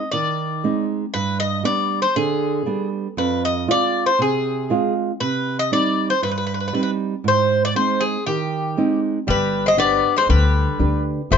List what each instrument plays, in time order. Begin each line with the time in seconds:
Already playing: bouzouki D#5
0.11 nylon-string guitar D#3, bouzouki D5
0.64 nylon-string guitar G#3 C4 D#4
1.14 nylon-string guitar G2, bouzouki B4
1.40 bouzouki D#5
1.63 nylon-string guitar G3 B3 D4, bouzouki D5
2.02 bouzouki C5
2.16 nylon-string guitar D3, bouzouki G#4
2.66 nylon-string guitar G3 B3 D4
3.17 nylon-string guitar F2, bouzouki B4
3.45 bouzouki D#5
3.67 nylon-string guitar G#3 C4 F4, bouzouki D5
4.06 bouzouki C5
4.19 nylon-string guitar C3, bouzouki G#4
4.70 nylon-string guitar G#3 C4 F4
5.20 nylon-string guitar C3, bouzouki B4
5.59 bouzouki D#5
5.72 nylon-string guitar G3 C4 D#4, bouzouki D5
6.10 bouzouki C5
6.22 nylon-string guitar G2, bouzouki B4
6.31 bouzouki B4
6.38 bouzouki B4
6.47 bouzouki B4
6.54 bouzouki B4
6.60 bouzouki B4
6.68 bouzouki B4
6.73 nylon-string guitar G3 C4 D#4, bouzouki B4
6.83 bouzouki B4
7.24 nylon-string guitar G#2, bouzouki C5
7.65 bouzouki D5
7.76 nylon-string guitar G#3 C4 D#4, bouzouki C5
8.00 bouzouki G#4
8.26 nylon-string guitar D#3, bouzouki G4
8.77 nylon-string guitar G#3 C4 D#4
9.27 upright bass G1, nylon-string guitar G3, bouzouki G3 B4
9.66 bouzouki C4 D#5
9.77 bouzouki B3 D5, nylon-string guitar D4 G4 B4
10.16 bouzouki G#3 C5
10.29 upright bass D2, nylon-string guitar D3, bouzouki G3 B4
10.79 upright bass D2, nylon-string guitar D4 G4 B4
11.31 upright bass F1, nylon-string guitar F3, bouzouki A3 C5